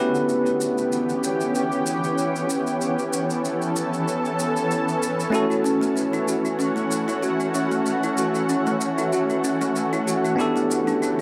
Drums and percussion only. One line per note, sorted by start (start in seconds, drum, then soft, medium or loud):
0.15 shaker soft
0.29 shaker soft
0.46 shaker soft
0.61 shaker medium
0.78 shaker soft
0.92 shaker soft
1.09 shaker soft
1.24 shaker medium
1.41 shaker soft
1.55 shaker soft
1.72 shaker soft
1.86 shaker medium
2.04 shaker soft
2.18 shaker soft
2.36 shaker soft
2.50 shaker medium
2.67 shaker soft
2.81 shaker soft
2.99 shaker soft
3.13 shaker medium
3.30 shaker soft
3.45 shaker soft
3.62 shaker soft
3.76 shaker medium
3.94 shaker soft
4.08 shaker soft
4.25 shaker soft
4.39 shaker medium
4.57 shaker soft
4.71 shaker soft
4.89 shaker soft
5.03 shaker medium
5.20 shaker soft
5.34 shaker soft
5.51 shaker soft
5.66 shaker medium
5.83 shaker soft
5.97 shaker soft
6.14 shaker soft
6.28 shaker medium
6.45 shaker soft
6.60 shaker soft
6.77 shaker soft
6.91 shaker medium
7.09 shaker soft
7.23 shaker soft
7.40 shaker soft
7.55 shaker medium
7.72 shaker soft
7.86 shaker soft
8.04 shaker soft
8.18 shaker medium
8.35 shaker soft
8.49 shaker soft
8.67 shaker soft
8.81 shaker medium
8.98 shaker soft
9.13 shaker soft
9.30 shaker soft
9.44 shaker medium
9.62 shaker soft
9.76 shaker soft
9.93 shaker soft
10.08 shaker medium
10.25 shaker soft
10.40 shaker soft
10.57 shaker soft
10.71 shaker medium
10.88 shaker soft
11.03 shaker soft